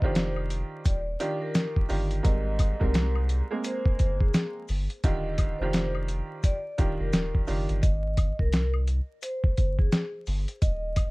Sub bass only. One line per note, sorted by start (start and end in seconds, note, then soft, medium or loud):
0.02 0.63 F1 medium
0.86 1.16 D#1 loud
1.90 2.20 G1 loud
2.25 2.74 G#1 loud
2.81 3.42 C2 loud
4.00 4.30 G1 loud
4.69 4.88 G1 loud
5.04 5.53 D#1 loud
5.60 6.21 F1 loud
6.79 6.97 D#1 loud
7.00 7.12 F1 medium
7.13 7.32 D#1 loud
7.48 7.67 F#1 loud
7.69 7.81 G1 loud
7.83 8.32 G#1 loud
8.39 9.00 C2 medium
9.58 9.88 G1 medium
10.27 10.46 G1 loud
10.62 11.11 D#1 loud